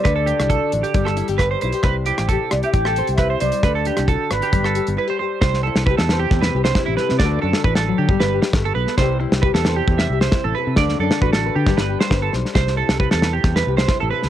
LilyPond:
<<
  \new Staff \with { instrumentName = "Flute" } { \time 4/4 \key c \major \tempo 4 = 134 d''2~ d''8 r4. | r4. d''16 e''16 g''4 e''8 d''8~ | d''4 r8 b'2 r8 | r1 |
r1 | r1 | r1 | r1 | }
  \new Staff \with { instrumentName = "Clean electric guitar" } { \time 4/4 \key c \major b'16 a'16 g'8 a'8 r16 g'8 a'8 r16 b'16 c''16 c''8 | b'16 r16 g'8 a'8 r16 g'8 a'8 r16 b'16 c''16 c''8 | b'16 a'16 g'8 a'8 r16 g'8 a'8 r16 b'16 c''16 c''8 | c''8 a'8 b'16 a'8 g'8 b'8 c''8 e'16 b'8 |
d''8 a'8 b'16 a'8 g'8 b'8 r8 a'16 b'8 | c''8 r8 b'16 a'8 g'8 e''8 c''8 a'16 b'8 | d''8 a'8 b'16 a'8 g'8 b'8 c''8 a'16 r8 | c''8 a'8 b'16 a'8 g'8 b'8 c''8 a'16 b'8 | }
  \new Staff \with { instrumentName = "Nylon-string guitar" } { \time 4/4 \key c \major << { a'4 fis'8 d'8 r8 e'16 g'16 b'8 e'16 g'16 | c''8 e'8 g'8 e'8 e'16 g'16 c''8 e'4 | a'8 d'8 fis'8 d'8 g'8 g'8 e'16 g'16 g'8 | r8 e'8 g'8 c''4 g'8 e'8 a'8 |
<a d' fis' a'>8 d'4. r8 g'4. | <g e' g' c''>8 e'8 g'8 c''4 g'8 e'8 a'8~ | a'8 d'8 fis'8 b'8 <d' g' b'>8 g'8 b'8 c''8 | r8 e'8 g'8. c''8. g'8 e'8 a'8 | } \\ { d2 g2 | c2.~ c8 g8 | d2 g2 | c2 c2 |
d4 e8 fis8 g4 a8 b8 | c2 c2 | d2 g2 | c2 c2 | } >> }
  \new Staff \with { instrumentName = "Fingered electric bass" } { \clef bass \time 4/4 \key c \major d,8. c,8 r16 a,,16 r16 g,,8. g,,8. b,,16 r16 | c,8. a,,8 r16 c,16 r16 a,,8. c,8. c,16 r16 | d,8. c,8 r16 aes,,16 r16 g,,8. g,,16 r4 | c,8. c,8 e,8. e,8 c,8 r16 a,,16 r16 c16 |
d,8 fis,16 r16 a,,8. d16 g,,16 g,,8 r16 g,,8 b,,16 r16 | c,8. c,8 e,8. e,8 c,8 r16 a,,16 r16 c16 | d,8 fis,16 r16 a,,8. d16 g,,16 g,,8 r16 g,,8 b,,16 r16 | c,8. c,8 e,8. e,8 c,8 r16 a,,16 r16 des,16 | }
  \new DrumStaff \with { instrumentName = "Drums" } \drummode { \time 4/4 <hh bd ss>8 hh16 <hh ss>16 <hh bd>8 hh16 hh16 <hh bd>16 ss16 hh16 hh16 <hh bd ss>8 hh16 hh16 | <hh bd ss>8 hh16 <hh ss>16 <hh bd>8 <hh ss>16 hh16 <hh bd>16 ss16 hh16 hh16 <hh bd ss>8 hh16 hh16 | <hh bd ss>8 hh16 <hh ss>16 <hh bd>8 <hh ss>16 hh16 <hh bd>16 ss16 hh16 hh16 r4 | <bd sn>16 sn8 sn16 bd16 sn16 sn8 <bd sn>16 sn8 sn16 <bd sn>8 sn16 sn16 |
<bd sn>8. sn16 bd16 sn8. bd16 sn8 sn16 <bd sn>8. sn16 | <bd sn>8. sn16 bd16 sn16 sn8 bd16 sn8 sn16 <bd sn>4 | <bd sn>16 sn8 sn16 bd16 sn8. <bd sn>16 sn8 sn16 <bd sn>8 sn16 sn16 | <bd sn>16 sn8 sn16 bd16 sn16 sn8 <bd sn>16 sn8 sn16 <bd sn>8. sn16 | }
>>